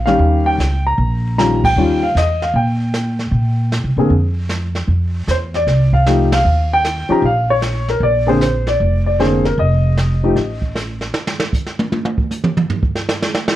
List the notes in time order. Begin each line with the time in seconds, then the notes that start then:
Already playing: A#1
0.06 D#3 G3 C#4 G4 F5, snare
0.19 D#2, brush sweep
0.46 G5
0.58 C#2, snare, hi-hat pedal
0.86 A#5
0.98 A#1, brush sweep
1.38 D#3 G3 C#4 F4 A#5, snare, hi-hat pedal
1.64 G5, kick, ride
1.76 D#2 D#3 G3 C#4 F4, brush sweep
2.03 F5
2.15 E2 D#5, snare, hi-hat pedal
2.42 F5, snare
2.53 A#2 G5, brush sweep
2.94 snare, hi-hat pedal
3.19 snare
3.31 A#2, brush sweep
3.72 snare, hi-hat pedal
3.84 C3
3.96 A2 D3 A#3 C4 G#4
4.10 F2, brush sweep
4.50 snare, hi-hat pedal
4.75 snare
4.88 F2, brush sweep
5.27 E2 C5, snare, hi-hat pedal
5.54 D5, snare
5.67 C2, brush sweep, snare
5.93 F5, kick
6.07 F3 A3 D#4 G4, snare, hi-hat pedal
6.32 F5, snare, ride
6.45 D#2, brush sweep
6.74 G5
6.85 snare, hi-hat pedal
7.09 F3 C#4 D#4 G4 A#5, muted upright bass stroke
7.22 A#1 F5, brush sweep
7.50 C#5
7.62 snare, hi-hat pedal
7.89 A#4, snare
8.00 A#1 D5, brush sweep
8.27 D3 A#3 C4 G#4 C5
8.41 C5, snare, hi-hat pedal
8.67 D5, snare
8.80 F1, brush sweep
9.06 D5
9.19 D3 A#3 C4 G#4 C5, snare, hi-hat pedal
9.45 A#4, snare
9.58 F1 D#5, brush sweep
9.98 snare, hi-hat pedal
10.23 F3 A3 D#4 G4
10.36 A1, brush sweep, snare
10.62 kick
10.75 snare, hi-hat pedal
11.01 snare
11.14 snare
11.27 snare
11.40 snare
11.53 kick, hi-hat pedal
11.66 snare
11.79 high tom
11.92 high tom
12.05 high tom
12.18 kick
12.31 hi-hat pedal, high tom
12.44 mid tom
12.57 mid tom
12.70 floor tom
12.83 kick
12.95 snare
13.09 snare, hi-hat pedal
13.22 snare
13.34 snare
13.48 snare